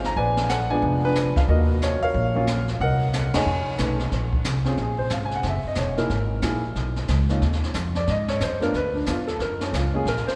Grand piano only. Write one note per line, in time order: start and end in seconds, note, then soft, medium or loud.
0.00 0.14 G#4 medium
0.00 0.14 C5 medium
0.06 0.16 A#5 loud
0.17 0.79 B4 medium
0.17 0.79 D5 medium
0.17 0.50 G#5 loud
0.50 0.69 F#5 medium
0.70 1.13 F3 medium
0.70 1.13 G#3 medium
0.70 1.13 B3 medium
0.70 1.04 D4 medium
0.70 0.81 G#5 loud
1.05 1.46 D4 medium
1.05 1.46 G#4 medium
1.05 1.38 B4 loud
1.37 1.42 F5 medium
1.49 2.11 F#4 medium
1.49 2.02 A#4 medium
1.49 1.79 D#5 medium
1.83 2.01 C#5 medium
2.03 2.64 A#4 medium
2.03 2.64 C#5 medium
2.03 2.64 F5 loud
2.35 2.46 F#3 medium
2.35 2.46 A#3 medium
2.35 2.46 C#4 medium
2.35 2.46 F4 medium
2.81 3.43 A#4 medium
2.81 3.35 D#5 medium
2.81 3.30 F#5 loud
3.34 3.44 A3 medium
3.34 3.45 C#4 medium
3.34 3.45 D#4 medium
3.34 3.46 G#4 medium
3.34 3.97 C#5 medium
3.34 3.96 D#5 medium
3.34 3.76 G#5 medium
3.78 3.97 A3 medium
3.78 3.97 C#4 medium
3.78 3.97 D#4 medium
3.78 3.98 B4 medium
4.65 4.76 C4 medium
4.65 4.77 C#4 medium
4.65 4.77 F4 medium
4.65 4.77 G#4 medium
4.82 5.00 G#4 medium
4.98 5.10 C5 medium
5.13 5.22 F5 medium
5.25 5.34 G#5 medium
5.36 5.45 F#5 medium
5.49 5.66 E5 medium
5.68 5.78 D#5 medium
5.79 5.97 C#5 medium
5.97 6.08 A#3 medium
5.97 6.08 D#4 medium
5.97 6.09 E4 medium
5.97 6.09 G#4 medium
5.97 6.40 A#4 medium
6.42 6.61 A#3 medium
6.42 6.61 D#4 soft
6.42 6.62 E4 soft
6.42 6.62 G#4 medium
7.29 7.40 A#3 medium
7.29 7.40 C#4 medium
7.29 7.41 D#4 medium
7.29 7.41 F4 medium
7.96 8.07 D5 medium
8.10 8.29 D#5 medium
8.29 8.40 C#5 medium
8.43 8.62 C5 medium
8.60 8.71 A3 medium
8.60 8.72 B3 medium
8.60 8.72 D4 medium
8.60 8.73 F4 medium
8.60 8.74 A#4 medium
8.76 8.95 B4 medium
8.94 9.06 D4 medium
9.09 9.28 F4 medium
9.27 9.39 A4 medium
9.42 9.61 A#4 medium
9.62 9.73 C#4 medium
9.76 9.94 F4 medium
9.93 10.04 G#3 medium
9.93 10.04 A#3 medium
9.93 10.05 C#4 medium
9.93 10.05 F4 medium
9.93 10.06 G#4 medium
10.08 10.27 A#4 medium
10.27 10.35 C5 medium